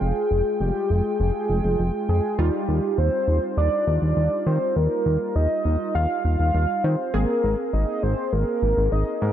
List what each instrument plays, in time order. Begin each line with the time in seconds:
Already playing: analog polysynth G#3 F4 G5, soft synth lead G#4
0.01 analog synth bass F1
0.31 analog synth bass F1
0.60 analog synth bass F1, soft synth lead G4
0.90 analog synth bass F1, soft synth lead G#4
1.20 analog synth bass F1
1.50 analog synth bass F1
1.64 analog synth bass F1
1.79 analog synth bass F1
2.09 analog synth bass F2, soft synth lead G#4
2.39 analog synth bass D#2, analog polysynth G3 D#4 F4, soft synth lead G4
2.68 analog synth bass D#2
2.98 analog synth bass D#2, soft synth lead C5
3.28 analog synth bass D#2
3.57 analog synth bass D#2, soft synth lead D5
3.87 analog synth bass D#2, soft synth lead D5
4.02 analog synth bass D#2
4.17 analog synth bass D#2
4.46 analog synth bass D#3, soft synth lead C5
4.76 analog synth bass D#2, soft synth lead A#4
5.06 analog synth bass D#2
5.36 analog synth bass D#2, soft synth lead D#5
5.65 analog synth bass D#2
5.95 analog synth bass D#2, soft synth lead F5
6.25 analog synth bass D#2, soft synth lead F5
6.40 analog synth bass D#2
6.54 analog synth bass D#2
6.84 analog synth bass D#3, soft synth lead C5
7.14 analog synth bass G#1, analog polysynth A#3 C4 G#4, soft synth lead A#4
7.44 analog synth bass G#1
7.73 analog synth bass G#1, soft synth lead D#5
8.03 analog synth bass G#1, soft synth lead C5
8.33 analog synth bass G#1, soft synth lead A#4
8.62 analog synth bass G#1
8.77 analog synth bass G#1
8.92 analog synth bass G#1, soft synth lead D#5
9.22 analog synth bass G#2, soft synth lead A#4